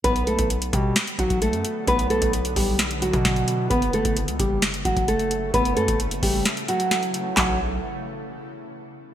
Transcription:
<<
  \new Staff \with { instrumentName = "Nylon-string guitar" } { \time 4/4 \key b \minor \tempo 4 = 131 <b b'>8 <a a'>8 r8 <g g'>8 r8 <fis fis'>8 <a a'>4 | <b b'>8 <a a'>8 r8 <g g'>8 r8 <fis fis'>4. | <b b'>8 <a a'>8 r8 <g g'>8 r8 <fis fis'>8 <a a'>4 | <b b'>8 <a a'>8 r8 <g g'>8 r8 <fis fis'>4. |
fis8 r2. r8 | }
  \new Staff \with { instrumentName = "Ambient pad" } { \clef bass \time 4/4 \key b \minor << { <d b>1~ | <d b>1 | <cis a>1~ | <cis a>1 |
r1 | } \\ { fis1 | e1 | fis1 | e1 |
r1 | } >> }
  \new Staff \with { instrumentName = "808-style bass" } { \clef bass \time 4/4 \key b \minor b,,8. b,,8. b,8 r8 b,,8. fis,16 r8 | b,,8. b,,8. b,,4~ b,,16 b,4~ b,16 | fis,,8 g,,16 fis,,8 cis,16 fis,,4 fis,,16 fis,,4~ fis,,16 | fis,,8 fis,16 fis,,8. fis,,8 r2 |
b,,4 r2. | }
  \new DrumStaff \with { instrumentName = "Drums" } \drummode { \time 4/4 <hh bd>16 hh16 hh16 <hh bd>16 hh16 hh16 <hh bd>8 <hh sn>16 hh16 <hh bd>16 <hh bd>16 hh16 hh16 hh8 | <hh bd>16 hh16 hh16 <hh bd>16 hh16 hh16 <hho bd>8 <hh sn>16 hh16 hh16 <hh bd>16 <hh bd sn>16 hh16 hh8 | <hh bd>16 hh16 hh16 <hh bd>16 hh16 hh16 <hh bd>8 <hh sn>16 hh16 <hh bd>16 <hh bd>16 hh16 hh16 hh8 | <hh bd>16 hh16 hh16 <hh bd>16 hh16 hh16 <hho bd>8 <hh sn>16 hh16 hh16 hh16 <hh sn>16 hh16 hh8 |
<hc bd sn>4 r4 r4 r4 | }
>>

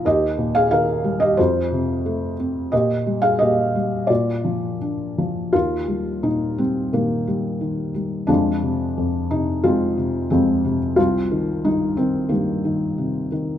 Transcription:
<<
  \new Staff \with { instrumentName = "Felt piano" } { \time 4/4 \key ees \major \tempo 4 = 89 << { ees''8. f''16 f''8. ees''16 c''4. r8 | ees''8. f''16 ees''4 d''4 r4 | f'4 ees'8 c'8 bes4. r8 | d'4. ees'8 f'4 c'8. r16 |
f'4 ees'8 c'8 bes4. r8 | } \\ { g'8. aes'16 bes'8. g'16 f'4. r8 | g'8. aes'16 g'4 f'4 r4 | bes2 <ees g>2 | <f aes>2 <aes c'>4 <f aes>4 |
c'2 <ees g>2 | } >> }
  \new Staff \with { instrumentName = "Felt piano" } { \clef bass \time 4/4 \key ees \major ees,8 bes,8 ees8 g8 f,8 c8 a8 c'8 | bes,8 g8 bes,8 g8 bes,8 f8 d'8 f8 | ees,8 g8 bes,8 g8 bes,8 g8 ees8 g8 | f,8 c8 f,8 c8 f,8 c8 f,8 c8 |
c,8 ees8 g,8 ees8 g,8 ees8 c8 ees8 | }
>>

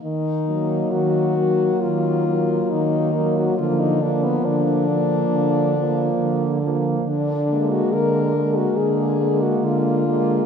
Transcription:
<<
  \new Staff \with { instrumentName = "French horn" } { \time 4/4 \key ees \minor \tempo 4 = 69 ees'4 ges'4 f'4 ees'8. ges'16 | f'16 ees'16 d'16 ces'16 d'2~ d'8. r16 | d'8. ges'16 bes'8. ges'16 aes'8. ges'16 f'4 | }
  \new Staff \with { instrumentName = "French horn" } { \time 4/4 \key ees \minor r8 bes4 bes4 bes4 bes8 | bes8 bes4 bes4 bes4 bes8 | r8 bes4 bes4 bes4 bes8 | }
  \new Staff \with { instrumentName = "French horn" } { \clef bass \time 4/4 \key ees \minor r8 ges4 ges4 ges4 ges8 | f8 f4 f4 f4 f8 | r8 aes4 aes4 aes4 aes8 | }
  \new Staff \with { instrumentName = "French horn" } { \clef bass \time 4/4 \key ees \minor ees4 ees4 ees4 ees4 | d4 d4 d4 d4 | d4 d4 d4 d4 | }
>>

